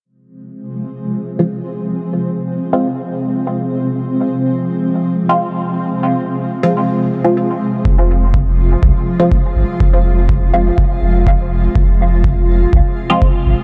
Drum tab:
BD |--------|--------|--------|--------|

BD |o-o-o-o-|o-o-o-o-|o-o-o-o-|